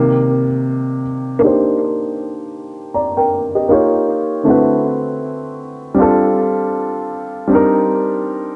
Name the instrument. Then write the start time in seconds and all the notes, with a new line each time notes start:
upright piano
Already playing: C3 D#3 A#3 D4 D5
1.39 A#3 D4 D#4
1.44 G4 C5
2.94 D5 A#5
3.17 A#4 G5
3.55 G4 D#5
3.69 A#3 D#4 F4 G4 C#5
4.43 D3 A3 C4
4.48 E4 F#4 B4
5.95 G3 C4 D4
6.00 F4 A4
7.47 G3 C4 D4
7.53 D#4 A#4